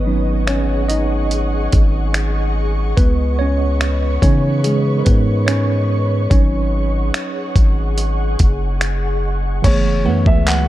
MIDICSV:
0, 0, Header, 1, 7, 480
1, 0, Start_track
1, 0, Tempo, 833333
1, 1715, Time_signature, 4, 2, 24, 8
1, 6152, End_track
2, 0, Start_track
2, 0, Title_t, "Synth pluck"
2, 0, Program_c, 0, 84
2, 5792, Note_on_c, 0, 78, 74
2, 6152, Note_off_c, 0, 78, 0
2, 6152, End_track
3, 0, Start_track
3, 0, Title_t, "Grand piano"
3, 0, Program_c, 1, 0
3, 5553, Note_on_c, 1, 73, 100
3, 5891, Note_off_c, 1, 73, 0
3, 5916, Note_on_c, 1, 76, 90
3, 6036, Note_on_c, 1, 78, 97
3, 6039, Note_off_c, 1, 76, 0
3, 6152, Note_off_c, 1, 78, 0
3, 6152, End_track
4, 0, Start_track
4, 0, Title_t, "Ambient pad"
4, 0, Program_c, 2, 92
4, 0, Note_on_c, 2, 68, 78
4, 0, Note_on_c, 2, 75, 74
4, 0, Note_on_c, 2, 78, 74
4, 0, Note_on_c, 2, 85, 91
4, 1695, Note_off_c, 2, 68, 0
4, 1695, Note_off_c, 2, 78, 0
4, 1712, Note_on_c, 2, 71, 77
4, 1713, Note_on_c, 2, 73, 72
4, 3615, Note_off_c, 2, 71, 0
4, 3615, Note_off_c, 2, 73, 0
4, 3635, Note_on_c, 2, 78, 73
4, 3636, Note_on_c, 2, 68, 78
4, 5531, Note_off_c, 2, 85, 0
4, 5533, Note_off_c, 2, 75, 0
4, 5536, Note_off_c, 2, 68, 0
4, 5536, Note_off_c, 2, 78, 0
4, 5550, Note_on_c, 2, 68, 70
4, 5551, Note_on_c, 2, 54, 77
4, 5551, Note_on_c, 2, 57, 70
4, 5551, Note_on_c, 2, 66, 74
4, 5551, Note_on_c, 2, 71, 72
4, 5552, Note_on_c, 2, 76, 83
4, 6152, Note_off_c, 2, 54, 0
4, 6152, Note_off_c, 2, 57, 0
4, 6152, Note_off_c, 2, 66, 0
4, 6152, Note_off_c, 2, 68, 0
4, 6152, Note_off_c, 2, 71, 0
4, 6152, Note_off_c, 2, 76, 0
4, 6152, End_track
5, 0, Start_track
5, 0, Title_t, "Tine electric piano"
5, 0, Program_c, 3, 4
5, 0, Control_c, 3, 64, 127
5, 0, Note_on_c, 3, 59, 75
5, 0, Note_on_c, 3, 71, 95
5, 35, Note_on_c, 3, 54, 58
5, 39, Note_on_c, 3, 61, 53
5, 43, Note_on_c, 3, 63, 65
5, 256, Note_off_c, 3, 59, 0
5, 271, Note_on_c, 3, 73, 97
5, 276, Note_off_c, 3, 61, 0
5, 283, Note_on_c, 3, 61, 79
5, 287, Note_off_c, 3, 71, 0
5, 496, Note_off_c, 3, 73, 0
5, 503, Note_off_c, 3, 61, 0
5, 510, Note_on_c, 3, 75, 91
5, 515, Note_off_c, 3, 63, 0
5, 522, Note_on_c, 3, 63, 76
5, 1449, Note_off_c, 3, 75, 0
5, 1455, Note_off_c, 3, 63, 0
5, 1692, Note_off_c, 3, 54, 0
5, 1710, Note_on_c, 3, 71, 102
5, 1723, Control_c, 3, 64, 0
5, 1724, Note_on_c, 3, 59, 80
5, 1826, Control_c, 3, 64, 127
5, 1943, Note_off_c, 3, 59, 0
5, 1951, Note_on_c, 3, 73, 107
5, 1960, Note_off_c, 3, 71, 0
5, 1966, Note_on_c, 3, 61, 82
5, 2418, Note_off_c, 3, 61, 0
5, 2424, Note_off_c, 3, 73, 0
5, 2431, Note_on_c, 3, 73, 94
5, 2435, Note_on_c, 3, 52, 55
5, 2438, Note_on_c, 3, 59, 51
5, 2443, Note_on_c, 3, 61, 80
5, 2443, Note_on_c, 3, 63, 64
5, 2662, Note_off_c, 3, 61, 0
5, 2672, Note_on_c, 3, 68, 90
5, 2680, Note_off_c, 3, 73, 0
5, 2685, Note_on_c, 3, 56, 70
5, 2866, Note_off_c, 3, 56, 0
5, 2870, Note_on_c, 3, 70, 66
5, 2879, Note_off_c, 3, 68, 0
5, 2910, Note_on_c, 3, 71, 92
5, 2913, Note_off_c, 3, 70, 0
5, 2915, Note_off_c, 3, 59, 0
5, 2922, Note_on_c, 3, 59, 72
5, 3132, Note_off_c, 3, 52, 0
5, 3136, Note_off_c, 3, 63, 0
5, 3136, Note_off_c, 3, 71, 0
5, 3142, Note_off_c, 3, 59, 0
5, 3148, Note_on_c, 3, 73, 99
5, 3161, Note_on_c, 3, 61, 78
5, 3615, Note_off_c, 3, 61, 0
5, 3623, Note_off_c, 3, 73, 0
5, 3630, Note_on_c, 3, 73, 83
5, 3635, Note_on_c, 3, 54, 51
5, 3639, Note_on_c, 3, 61, 72
5, 3641, Note_on_c, 3, 63, 59
5, 3642, Control_c, 3, 64, 0
5, 3727, Control_c, 3, 64, 127
5, 4332, Note_off_c, 3, 54, 0
5, 4335, Note_off_c, 3, 63, 0
5, 5050, Note_off_c, 3, 73, 0
5, 5056, Note_off_c, 3, 61, 0
5, 5542, Note_on_c, 3, 52, 70
5, 5552, Note_on_c, 3, 57, 62
5, 5562, Note_on_c, 3, 59, 62
5, 5563, Control_c, 3, 64, 0
5, 5572, Note_on_c, 3, 68, 78
5, 5676, Control_c, 3, 64, 127
5, 5755, Note_off_c, 3, 52, 0
5, 5761, Note_off_c, 3, 57, 0
5, 5765, Note_off_c, 3, 59, 0
5, 5770, Note_off_c, 3, 68, 0
5, 5787, Note_on_c, 3, 52, 75
5, 5797, Note_on_c, 3, 57, 72
5, 5806, Note_on_c, 3, 59, 70
5, 5814, Note_on_c, 3, 71, 84
5, 6152, Note_off_c, 3, 52, 0
5, 6152, Note_off_c, 3, 57, 0
5, 6152, Note_off_c, 3, 59, 0
5, 6152, Note_off_c, 3, 71, 0
5, 6152, End_track
6, 0, Start_track
6, 0, Title_t, "808-style bass"
6, 0, Program_c, 4, 38
6, 0, Note_on_c, 4, 32, 113
6, 971, Note_off_c, 4, 32, 0
6, 998, Note_on_c, 4, 32, 108
6, 1694, Note_off_c, 4, 32, 0
6, 1713, Note_on_c, 4, 37, 108
6, 2411, Note_off_c, 4, 37, 0
6, 2432, Note_on_c, 4, 49, 101
6, 2894, Note_off_c, 4, 49, 0
6, 2918, Note_on_c, 4, 44, 101
6, 3614, Note_off_c, 4, 44, 0
6, 3634, Note_on_c, 4, 32, 111
6, 4096, Note_off_c, 4, 32, 0
6, 4352, Note_on_c, 4, 32, 95
6, 4815, Note_off_c, 4, 32, 0
6, 4838, Note_on_c, 4, 30, 97
6, 5534, Note_off_c, 4, 30, 0
6, 5554, Note_on_c, 4, 30, 105
6, 5797, Note_on_c, 4, 42, 103
6, 5805, Note_off_c, 4, 30, 0
6, 5907, Note_off_c, 4, 42, 0
6, 5911, Note_on_c, 4, 37, 101
6, 6152, Note_off_c, 4, 37, 0
6, 6152, End_track
7, 0, Start_track
7, 0, Title_t, "Drums"
7, 274, Note_on_c, 9, 26, 111
7, 274, Note_on_c, 9, 42, 59
7, 331, Note_off_c, 9, 26, 0
7, 331, Note_off_c, 9, 42, 0
7, 516, Note_on_c, 9, 42, 63
7, 573, Note_off_c, 9, 42, 0
7, 755, Note_on_c, 9, 42, 66
7, 813, Note_off_c, 9, 42, 0
7, 994, Note_on_c, 9, 42, 66
7, 997, Note_on_c, 9, 36, 86
7, 1051, Note_off_c, 9, 42, 0
7, 1055, Note_off_c, 9, 36, 0
7, 1234, Note_on_c, 9, 26, 106
7, 1234, Note_on_c, 9, 42, 70
7, 1292, Note_off_c, 9, 26, 0
7, 1292, Note_off_c, 9, 42, 0
7, 1713, Note_on_c, 9, 36, 109
7, 1714, Note_on_c, 9, 42, 64
7, 1771, Note_off_c, 9, 36, 0
7, 1772, Note_off_c, 9, 42, 0
7, 2194, Note_on_c, 9, 26, 113
7, 2194, Note_on_c, 9, 42, 58
7, 2251, Note_off_c, 9, 26, 0
7, 2251, Note_off_c, 9, 42, 0
7, 2432, Note_on_c, 9, 36, 98
7, 2435, Note_on_c, 9, 42, 65
7, 2490, Note_off_c, 9, 36, 0
7, 2493, Note_off_c, 9, 42, 0
7, 2674, Note_on_c, 9, 42, 68
7, 2732, Note_off_c, 9, 42, 0
7, 2914, Note_on_c, 9, 42, 70
7, 2918, Note_on_c, 9, 36, 89
7, 2972, Note_off_c, 9, 42, 0
7, 2975, Note_off_c, 9, 36, 0
7, 3155, Note_on_c, 9, 42, 74
7, 3156, Note_on_c, 9, 26, 101
7, 3213, Note_off_c, 9, 26, 0
7, 3213, Note_off_c, 9, 42, 0
7, 3634, Note_on_c, 9, 36, 112
7, 3635, Note_on_c, 9, 42, 63
7, 3692, Note_off_c, 9, 36, 0
7, 3692, Note_off_c, 9, 42, 0
7, 4114, Note_on_c, 9, 26, 112
7, 4114, Note_on_c, 9, 42, 60
7, 4171, Note_off_c, 9, 26, 0
7, 4171, Note_off_c, 9, 42, 0
7, 4352, Note_on_c, 9, 36, 97
7, 4355, Note_on_c, 9, 42, 62
7, 4410, Note_off_c, 9, 36, 0
7, 4412, Note_off_c, 9, 42, 0
7, 4594, Note_on_c, 9, 42, 70
7, 4652, Note_off_c, 9, 42, 0
7, 4834, Note_on_c, 9, 42, 71
7, 4838, Note_on_c, 9, 36, 84
7, 4891, Note_off_c, 9, 42, 0
7, 4895, Note_off_c, 9, 36, 0
7, 5075, Note_on_c, 9, 26, 102
7, 5075, Note_on_c, 9, 42, 73
7, 5132, Note_off_c, 9, 42, 0
7, 5133, Note_off_c, 9, 26, 0
7, 5554, Note_on_c, 9, 36, 107
7, 5554, Note_on_c, 9, 42, 62
7, 5555, Note_on_c, 9, 49, 92
7, 5612, Note_off_c, 9, 36, 0
7, 5612, Note_off_c, 9, 42, 0
7, 5612, Note_off_c, 9, 49, 0
7, 5911, Note_on_c, 9, 36, 88
7, 5968, Note_off_c, 9, 36, 0
7, 6035, Note_on_c, 9, 39, 106
7, 6035, Note_on_c, 9, 42, 61
7, 6092, Note_off_c, 9, 39, 0
7, 6093, Note_off_c, 9, 42, 0
7, 6152, End_track
0, 0, End_of_file